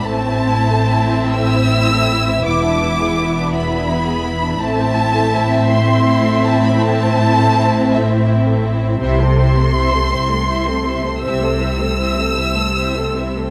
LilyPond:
<<
  \new Staff \with { instrumentName = "Violin section" } { \time 12/8 \key a \minor \tempo 4. = 54 a''4. e'''4. d'''4. b''4. | a''4. c'''4 a''16 b''16 a''4. e''8 r4 | c'''2. e'''2. | }
  \new Staff \with { instrumentName = "Violin section" } { \time 12/8 \key a \minor << { e''1. | e''1. | e''16 c''16 e''16 c''16 e''16 c''16 e''16 c''16 e''16 c''16 e''16 c''16 e''16 c''16 e''16 c''16 e''16 c''16 e''16 c''16 e''16 c''16 e''16 c''16 | } \\ { a16 c'16 e'16 a'16 e'16 c'16 a16 c'16 e'16 a'16 e'16 c'16 b16 d'16 e'16 gis'16 e'16 d'16 b16 d'16 e'16 gis'16 e'16 d'16 | a16 c'16 e'16 a'16 e'16 c'16 a16 c'16 e'16 a'16 e'16 c'16 a16 c'16 e'16 a'16 e'16 c'16 a16 c'16 e'16 a'16 e'16 c'16 | c''16 a'16 c''16 a'16 c''16 a'16 c''16 a'16 c''16 a'16 c''16 a'16 c''16 a'16 c''16 a'16 c''16 a'16 c''16 a'16 c''16 a'16 c''16 a'16 | } >> }
  \new Staff \with { instrumentName = "Viola section" } { \time 12/8 \key a \minor << { e'1. | e'1. | e'16 c'16 e'16 c'16 e'16 c'16 e'16 c'16 e'16 c'16 e'16 c'16 e'16 c'16 e'16 c'16 e'16 c'16 e'16 c'16 e'16 c'16 e'16 c'16 | } \\ { c'2. b2. | c'1. | c'16 a16 c'16 a16 c'16 a16 c'16 a16 c'16 a16 c'16 a16 c'16 a16 c'16 a16 c'16 a16 c'16 a16 c'16 a16 c'16 a16 | } >> }
  \new Staff \with { instrumentName = "Cello section" } { \clef bass \time 12/8 \key a \minor a,2. e,2. | a,1. | c4. c4. c4. c4. | }
  \new Staff \with { instrumentName = "Double bass section" } { \clef bass \time 12/8 \key a \minor a,,2. e,,2. | a,,1. | c,4. c,4. c,4. c,4. | }
>>